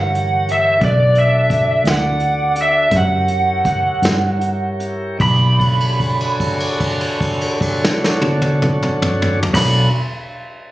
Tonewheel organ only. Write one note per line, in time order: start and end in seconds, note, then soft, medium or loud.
0.00 0.78 E3 medium
0.00 0.77 G4 medium
0.00 0.78 A#4 medium
0.00 0.78 C#5 medium
0.80 2.89 D4 medium
0.80 2.89 F#4 medium
0.80 2.88 A4 medium
0.80 2.89 D5 medium
2.92 5.18 E4 medium
2.92 5.18 G4 medium
2.92 5.18 A#4 medium
2.92 5.18 C#5 medium
5.18 5.59 A#3 medium
5.18 5.59 D#4 medium
5.18 5.59 G4 medium
5.18 5.60 D5 medium
5.59 9.40 D4 medium
5.59 9.40 F#4 medium
5.59 9.40 A4 medium
5.59 9.40 C#5 medium
9.53 9.89 D4 medium
9.53 9.89 F#4 medium
9.53 9.89 A4 medium
9.53 9.89 C#5 medium